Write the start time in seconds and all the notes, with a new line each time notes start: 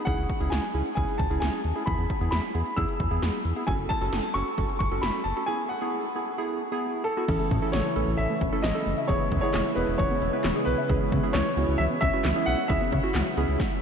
0.05 C#2 C#4 E4 G#4 F#5, kick, closed hi-hat
0.18 C#2, closed hi-hat
0.29 kick, closed hi-hat
0.41 C#2 C#4 E4 G#4, closed hi-hat
0.50 C#2 G#5, snare, closed hi-hat
0.64 closed hi-hat
0.74 C#2 C#4 E4 G#4, closed hi-hat
0.86 closed hi-hat
0.95 C#2 C#4 E4 G#4 G#5, kick, closed hi-hat
1.09 closed hi-hat
1.18 C#2 A5, kick, closed hi-hat
1.31 C#2 C#4 E4 G#4, closed hi-hat
1.40 C#2 G#5, snare, closed hi-hat
1.53 closed hi-hat
1.64 D#2, closed hi-hat
1.76 C#4 E4 G#4, closed hi-hat
1.86 E2 B3 E4 G#4 B5, kick, closed hi-hat
1.98 E2, closed hi-hat
2.10 kick, closed hi-hat
2.21 E2 B3 E4 G#4, closed hi-hat
2.31 E2 B5, snare, closed hi-hat
2.44 closed hi-hat
2.55 E2 B3 E4 G#4, closed hi-hat
2.66 closed hi-hat
2.77 E2 B3 E4 G#4 E6, kick, closed hi-hat
2.89 closed hi-hat
3.00 E2, kick, closed hi-hat
3.11 E2 B3 E4 G#4, closed hi-hat
3.22 E2, snare, closed hi-hat
3.34 closed hi-hat
3.45 E2, closed hi-hat
3.56 B3 E4 G#4, closed hi-hat
3.67 F#1 C#4 F#4 A4 G#5, kick, closed hi-hat
3.79 F#1, closed hi-hat
3.89 A5, kick, closed hi-hat
4.01 F#1 C#4 F#4 A4, closed hi-hat
4.12 F#1, snare, closed hi-hat
4.24 closed hi-hat
4.34 F#1 C#4 F#4 A4 C#6, closed hi-hat
4.47 closed hi-hat
4.58 F#1 C#4 F#4 A4, kick, closed hi-hat
4.69 closed hi-hat
4.79 F#1 C#6, kick, closed hi-hat
4.91 F#1 C#4 F#4 A4, closed hi-hat
5.02 F#1 B5, snare, closed hi-hat
5.14 closed hi-hat
5.24 F#1 A5, closed hi-hat
5.37 C#4 F#4 A4, closed hi-hat
5.46 B3 E4 G#4 G#5
5.69 F#5
5.82 B3 E4 G#4
6.16 B3 E4 G#4
6.38 B3 E4 G#4
6.72 B3 E4 G#4
7.04 A4
7.17 B3 E4 F#4
7.28 A1 C#3 E3 A3 C#4 E4 A4, kick, closed hi-hat, crash
7.40 A3
7.51 A2 C#4, kick, closed hi-hat
7.62 C#4 E4 A4
7.72 A1 E3 C#5, snare, closed hi-hat
7.96 A1 A3 C#4 E4 A4, closed hi-hat
8.07 A1
8.17 A1 E3 E5, closed hi-hat
8.30 A3
8.41 A1 C#4, kick, closed hi-hat
8.53 C#4 E4 A4
8.62 A1 E3 D#5, snare, closed hi-hat
8.75 C#4 E4 A4
8.86 F#1 A3, open hi-hat
8.98 E5
9.08 E1 E3 G#3 B3 E4 G#4 C#5, kick, closed hi-hat
9.20 B3
9.31 E2 C#4, kick, closed hi-hat
9.41 B3 E4 G#4 C#5
9.54 E1 E3, snare, clap, closed hi-hat
9.75 E1 B3 E4 G#4 B4, closed hi-hat
9.88 E1
9.98 E1 E3 C#5, kick, closed hi-hat
10.11 B3
10.22 E1 C#4, closed hi-hat
10.33 B3 E4 B4
10.44 E1 E3, snare, clap, closed hi-hat
10.56 B3 E4 G#4
10.65 B1 B3 B4, open hi-hat
10.78 E5
10.89 C#2 E3 C#4 E4 G#4, kick, closed hi-hat
11.01 B3
11.12 C#3 C#4, kick, closed hi-hat
11.23 C#4 E4 G#4
11.33 C#2 E3 C#5, snare, clap, closed hi-hat
11.57 C#2 B3 C#4 E4 F#4, closed hi-hat
11.68 C#2
11.78 C#2 E3 E5, closed hi-hat
11.91 B3
12.01 C#2 C#4 E5, kick, closed hi-hat
12.13 C#4 E4 F#4
12.25 C#2 E3, snare, clap, closed hi-hat
12.36 C#4 E4 G#4
12.46 B1 B3 F#5, open hi-hat
12.59 E5
12.68 C#2 E3 C#4 E4 G#4 E5, kick, closed hi-hat
12.81 B3
12.92 C#3 C#4, kick, closed hi-hat
13.03 C#4 E4 F#4
13.15 C#2 E3, snare, clap, closed hi-hat
13.37 C#2 B3 C#4 E4 G#4, closed hi-hat
13.49 C#2
13.60 kick, snare